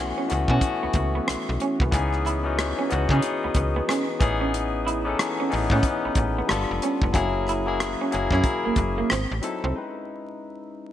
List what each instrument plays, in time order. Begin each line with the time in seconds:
Already playing: fm bass B1, tine electric piano E3 A3 B3 C#4 F#4
0.18 clean electric guitar C#4
0.28 tine electric piano E3 A3 B3 C#4 F#4, muted clean electric guitar stroke, closed hi-hat
0.32 fm bass C#2
0.48 fm bass B2, tine electric piano E3 A3 B3 C#4 F#4, clean electric guitar C#4, kick
0.61 kick, closed hi-hat
0.83 fm bass C#2, clean electric guitar B3
0.93 fm bass C#2, muted clean electric guitar stroke, kick, closed hi-hat
1.15 clean electric guitar B3
1.28 fm bass B1, muted clean electric guitar stroke, cross-stick, closed hi-hat
1.49 fm bass B1
1.60 clean electric guitar C#4, closed hi-hat
1.80 fm bass C2, clean electric guitar B3, kick
1.91 fm bass C#2, tine electric piano E3 B3 C#4 D#4 G#4, kick, closed hi-hat
2.13 cross-stick
2.25 clean electric guitar E4, cross-stick, closed hi-hat
2.44 tine electric piano E3 B3 C#4 D#4 F#4
2.59 cross-stick, closed hi-hat
2.79 clean electric guitar C#4
2.89 fm bass C#2, tine electric piano E3 B3 C#4 D#4 F#4, muted clean electric guitar stroke, closed hi-hat
3.09 fm bass C#3, tine electric piano E3 B3 C#4 D#4 G#4, clean electric guitar C#4, kick, cross-stick
3.22 closed hi-hat
3.44 fm bass C#2, clean electric guitar B3
3.54 fm bass C#2, muted clean electric guitar stroke, kick, closed hi-hat
3.76 clean electric guitar B3
3.89 clean electric guitar C#4, cross-stick, closed hi-hat
4.19 fm bass A1, tine electric piano E3 B3 C#4 D#4 G#4, muted clean electric guitar stroke, kick, closed hi-hat
4.41 clean electric guitar C#4
4.54 closed hi-hat
4.87 clean electric guitar E4, closed hi-hat
5.04 tine electric piano E3 B3 C#4 D#4 A4
5.19 cross-stick, closed hi-hat
5.40 clean electric guitar C#4
5.50 fm bass A1, tine electric piano E3 B3 C#4 D#4 G#4, muted clean electric guitar stroke, open hi-hat
5.70 fm bass A2, tine electric piano E3 B3 C#4 D#4 B4, clean electric guitar C#4, kick
5.83 kick, closed hi-hat
6.05 fm bass A1, clean electric guitar B3
6.15 fm bass A1, muted clean electric guitar stroke, kick, closed hi-hat
6.38 clean electric guitar B3
6.47 fm bass G1, tine electric piano G3 B3 D4 F4 A4, muted clean electric guitar stroke, cross-stick
6.51 closed hi-hat
6.71 fm bass F1
6.82 clean electric guitar C#4, cross-stick, closed hi-hat
7.02 fm bass F1, clean electric guitar B3, kick
7.12 fm bass F#1, tine electric piano F#3 A#3 C#4 E4 G#4, kick, closed hi-hat
7.47 clean electric guitar E4, cross-stick, closed hi-hat
7.65 tine electric piano F#3 A#3 C#4 E4 G#4
7.80 cross-stick, closed hi-hat
8.01 clean electric guitar C#4
8.11 fm bass F#1, tine electric piano F#3 A#3 C#4 E4 G#4, muted clean electric guitar stroke, closed hi-hat
8.31 fm bass F#2, tine electric piano F#3 A#3 C#4 E4 G#4, clean electric guitar C#4, kick, cross-stick
8.44 kick, closed hi-hat
8.65 fm bass F#1, clean electric guitar A#3
8.76 fm bass F#1, muted clean electric guitar stroke, kick, closed hi-hat
8.98 clean electric guitar A#3
9.10 fm bass G#1, clean electric guitar C4, cross-stick, closed hi-hat
9.31 fm bass A1
9.41 tine electric piano F#3 C4 D#4 E4 A4, muted clean electric guitar stroke, cross-stick, closed hi-hat
9.64 fm bass C2, clean electric guitar C4
9.72 tine electric piano G#3 C#4 D#4
9.77 tine electric piano E4 B4